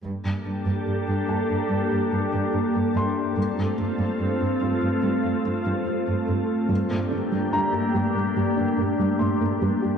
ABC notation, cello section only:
X:1
M:4/4
L:1/16
Q:1/4=72
K:Gm
V:1 name="Cello section" clef=bass
G,, G,, G,, G,, G,, G,, G,, G,, G,, G,, G,, G,, G,, G,, G,, z | G,, G,, G,, G,, G,, G,, G,, G,, G,, G,, G,, G,, G,, G,, G,, z | G,, G,, G,, G,, G,, G,, G,, G,, G,, G,, G,, G,, G,, G,, G,, G,, |]